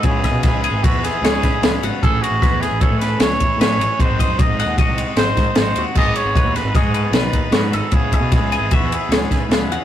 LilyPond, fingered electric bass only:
\new Staff \with { instrumentName = "Fingered electric bass" } { \clef bass \time 5/4 \key gis \phrygian \tempo 4 = 153 cis,8. b,8 cis,8 gis,,16 r16 e,8 r16 cis,8 cis16 r16 cis,8 gis,,16 r16 | a,,8 r16 a,,16 r16 e,8 a,,16 r16 a,8. cis,8 e,16 r16 a,8 a,,16 r16 | gis,,8. fis,8 gis,,8 dis,16 r16 bis,,8 r16 gis,,8 gis,16 r16 gis,,8 dis,16 r16 | gis,,8 r16 gis,,16 r16 dis,8 gis,,16 r16 gis,8. b,,8 dis,16 r16 gis,8 gis,,16 r16 |
cis,8. b,8 cis,8 gis,,16 r16 e,8 r16 cis,8 cis16 r16 cis,8 e,16 r16 | }